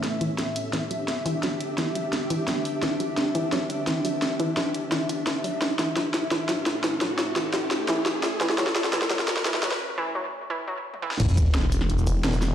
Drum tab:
CC |----------------|----------------|----------------|----------------|
HH |x-x-x-x-x-x-x-o-|x-x-x-x-x-x-x-o-|x-x-x-x-x-x-x-o-|x-x-x-x-x-x-x-o-|
SH |----------------|----------------|----------------|----------------|
SD |o---o---o---o---|o---o---o---o---|o---o---o---o---|o---o---o---o---|
T1 |----------------|----------------|----------------|----------------|
T2 |----------------|----------------|----------------|----------------|
BD |----------------|----------------|----------------|----------------|

CC |----------------|----------------|----------------|----------------|
HH |x-x-x-x-x-x-x-o-|x-x-x-x-x-x-x-o-|x-x-x-x-x-x-x-o-|----------------|
SH |----------------|----------------|----------------|----------------|
SD |o-o-o-o-o-o-o-o-|o-o-o-o-o-o-o-o-|oooooooooooooooo|---------------o|
T1 |----------------|----------------|----------------|-------------o--|
T2 |----------------|----------------|----------------|--------------o-|
BD |----------------|----------------|----------------|----------------|

CC |x---------------|
HH |x-x-x-x-x-x-x-o-|
SH |-xx---x--xx--xx-|
SD |----oo-o----o-o-|
T1 |----------------|
T2 |----------------|
BD |o-o-------------|